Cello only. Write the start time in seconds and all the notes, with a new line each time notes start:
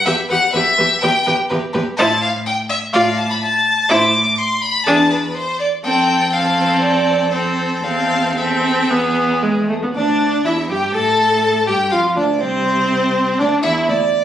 0.06 E2
0.30 E2
0.54 E2
0.78 E2
1.02 E2
1.27 E2
1.51 E2
1.74 E2
1.98 A2
2.93 A2
3.90 A2
4.87 E2
5.85 F2
7.84 E2
8.90 E2
9.95 D2
10.45 E2
10.70 G2
10.95 A2
11.68 G2
11.92 F2
12.17 D2
12.41 C2
13.40 D2
13.64 E2
13.88 D2